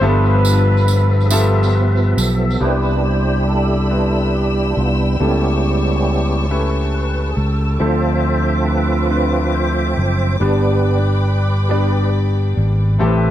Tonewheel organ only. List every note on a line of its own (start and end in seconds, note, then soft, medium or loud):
0.01 2.57 F3 medium
0.01 0.08 A#3 soft
0.01 1.30 A4 medium
0.01 2.57 E5 medium
0.07 2.60 B3 medium
1.24 1.31 G#4 medium
1.32 1.76 A4 loud
1.75 2.19 B4 medium
2.19 2.63 A4 medium
2.61 5.16 G3 soft
2.61 4.76 D4 soft
2.61 3.47 E4 medium
2.61 3.87 G4 medium
2.61 2.95 B4 soft
2.61 2.78 C5 medium
2.97 3.04 B4 medium
3.05 3.45 C5 medium
3.47 4.68 E4 medium
3.47 4.36 A4 medium
4.35 4.72 G4 medium
4.70 4.75 E4 medium
4.77 5.17 B3 soft
4.77 5.17 D4 soft
4.77 5.16 E4 soft
4.77 4.97 F4 medium
5.20 6.46 G3 soft
5.20 6.46 B3 soft
5.20 6.47 C#4 soft
5.20 6.47 E4 medium
5.20 6.47 G4 medium
6.51 6.70 A4 medium
6.94 7.31 B4 medium
7.29 7.36 G#4 medium
7.36 7.79 A4 medium
7.80 10.36 F3 soft
7.80 10.36 C4 soft
7.80 8.65 F4 medium
7.80 9.06 A4 medium
7.80 8.21 C5 medium
7.80 10.36 E5 soft
8.24 8.64 C5 medium
8.66 9.93 F4 medium
8.66 9.56 B4 medium
9.54 9.94 C5 medium
9.97 10.37 C5 medium
10.40 10.98 G3 soft
10.40 10.98 B3 soft
10.40 10.99 D4 soft
10.40 12.10 G4 soft
10.40 12.10 B4 medium
13.00 13.30 A3 medium
13.00 13.30 C4 medium
13.00 13.30 G4 medium
13.00 13.30 A4 medium